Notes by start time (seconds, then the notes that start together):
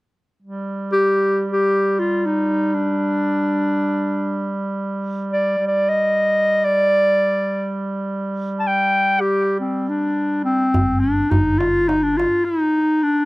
0.42 G3
0.92 G4
1.52 G4
1.99 F4
2.26 D#4
2.74 D4
5.33 D5
5.58 G3
5.68 D5
5.89 D#5
6.65 D5
8.60 A5
8.67 G5
9.21 G4
9.60 C4
9.89 D4
10.45 C4
10.74 G1, darbuka dum
11.00 D4
11.30 G1 D#4, darbuka dum
11.59 F4, darbuka tek
11.88 D#4, darbuka tek
12.03 D4
12.17 F4, darbuka tek
12.32 darbuka ka
12.45 D#4
12.76 darbuka ka
13.03 D4